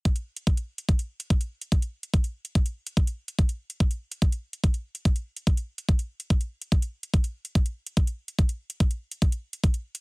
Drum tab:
HH |xx-xxx-xxx-xxx-x|xx-xxx-xxx-xxx-x|xx-xxx-xxx-xxx-x|xx-xxx-xxx-xxx-x|
BD |o---o---o---o---|o---o---o---o---|o---o---o---o---|o---o---o---o---|

HH |xx-xxx-xxx-xxx-x|xx-xxx-xxx-xxx-x|
BD |o---o---o---o---|o---o---o---o---|